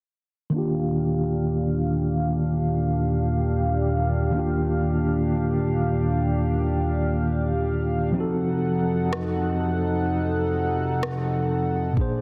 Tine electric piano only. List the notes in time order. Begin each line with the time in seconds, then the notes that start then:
0.50 D#3 A#3
0.54 D4 F4
0.58 G4
4.31 D#3 A#3
4.35 D4 F4
4.39 G4
8.12 F3 C4
8.16 D#4 F#4
8.20 A4
11.93 A#2 A#3
11.97 D4 G#4
12.01 C5